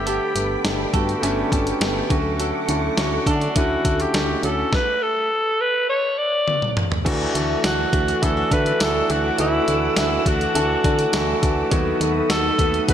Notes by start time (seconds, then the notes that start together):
Already playing: G1 D3 A3 B3 D4 G4 A4 G5 B5 D6
0.06 B3 G4 A4, closed hi-hat
0.34 G1 D3 A3 B3 G4, closed hi-hat
0.64 G1 D3 A3 B3 D4 G4, snare, closed hi-hat
0.93 G2 D3 A3 B3 F#4 A4, kick, closed hi-hat
1.09 closed hi-hat
1.22 G1 D3 A3 B3 C#4 D4, closed hi-hat
1.51 G1 D3 A3 B3 G4 A4, kick, closed hi-hat
1.67 closed hi-hat
1.80 G1 D3 A3 B3 G4, snare, closed hi-hat
2.10 D2 D3 F#3 A3 C#4 F#4 F#5 C#6 D6, kick, closed hi-hat
2.40 F#3 A4, closed hi-hat
2.68 D2 D3 A3 C#4 E4, closed hi-hat
2.97 D2 D3 A3 C#4 F#4, snare, closed hi-hat
3.26 D3 A3 C#4 D4 F#4 A4, kick, closed hi-hat
3.41 closed hi-hat
3.56 D2 D3 A3 C#4 E4 F#4, kick, closed hi-hat
3.84 D2 D3 A3 C#4 F#4 A4, kick, closed hi-hat
4.00 G4, closed hi-hat
4.13 D2 D3 A3 C#4 F#4, snare, closed hi-hat
4.42 D2 D3 A3 C#4 F#4 A4, closed hi-hat
4.73 B4, kick, snare
5.02 A4
5.61 B4
5.90 C#5
6.18 D5
6.48 high tom
6.62 mid tom
6.77 mid tom
6.92 floor tom
7.05 D2 E3 A3 D4 F#4 A4 F#5 D6 E6, kick, closed hi-hat, crash
7.34 D2 E3 A3 D4 A4, closed hi-hat
7.63 D2 E3 A3 D4 F#4, snare, closed hi-hat, tambourine
7.93 D2 E3 A3 D4 F#4, kick, closed hi-hat
8.08 closed hi-hat
8.22 D2 E3 A3 D4 E4 F#4 A4, kick, closed hi-hat
8.37 F#4
8.51 D3 E3 A3 D4 E4 B4, kick, closed hi-hat
8.66 closed hi-hat
8.80 D2 E3 A3 D4 E4 F#4 A4, snare, closed hi-hat, tambourine
9.10 D2 E3 A3 D4 F#4 A4, closed hi-hat
9.38 D2 E3 A3 D4 E4 F#4, closed hi-hat
9.67 D2 E3 A3 D4 F#4, closed hi-hat
9.96 D2 E3 A3 D4 E4 F#4, snare, closed hi-hat, tambourine
10.26 D2 E3 A3 D4 F#4, kick, closed hi-hat
10.41 closed hi-hat
10.55 D2 E3 A3 D4 F#4 A4, closed hi-hat
10.84 D3 E3 A3 D4 A4, kick, closed hi-hat
10.99 closed hi-hat
11.12 D2 E3 A3 D4 E4 F#4, snare, closed hi-hat, tambourine
11.42 D2 E3 A3 D4 F#4, kick, closed hi-hat
11.71 D#2 D#3 F#3 A3 B3 F#4 A4 F#5 B5 D#6, kick, closed hi-hat
12.00 D#2 D#3 A3 B3 F#4, closed hi-hat
12.29 D#2 D#3 A3 B3 F#4 A4, snare, closed hi-hat, tambourine
12.59 D#2 D#3 A3 B3 F#4, kick, closed hi-hat
12.74 closed hi-hat
12.88 D#2 D#3 A3 B3 F#4 B4, kick, closed hi-hat